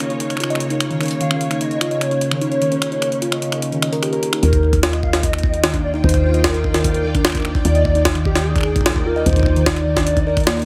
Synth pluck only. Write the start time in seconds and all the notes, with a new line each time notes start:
0.10 D#4
0.20 D#4
0.40 F4
0.50 D#5
0.70 D#4
0.91 D#3
1.00 D#4
1.21 D#3
1.31 C#4
1.51 D#4
1.61 D#4
1.81 F4
1.91 D#5
2.11 D#4
2.31 D#3
2.41 D#4
2.61 D#3
2.72 C#4
2.92 D#4
3.02 D#4
3.22 F4
3.32 D#5
3.52 D#4
3.72 D#3
3.82 D#5
3.92 A#4
4.03 G4
4.13 A#4
4.33 D#4
4.53 D#4
4.63 D#4
4.83 F4
4.93 D#5
5.13 D#4
5.33 D#3
5.43 D#4
5.63 D#3
5.74 D4
5.94 D#4
6.04 D#4
6.24 F4
6.34 D#5
6.54 D#4
6.74 D#3
6.85 D#4
7.05 D#3
7.15 D4
7.35 D#4
7.45 D#4
7.65 F4
7.75 D#5
7.95 D#4
8.15 D#3
8.25 D#4
8.46 D#3
8.56 D4
8.76 D#4
8.86 D#4
9.06 F4
9.16 D#5
9.36 D#4
9.56 D#3
9.86 D#3
9.96 D4
10.17 D#4
10.27 A#4
10.47 A#3
10.57 D#4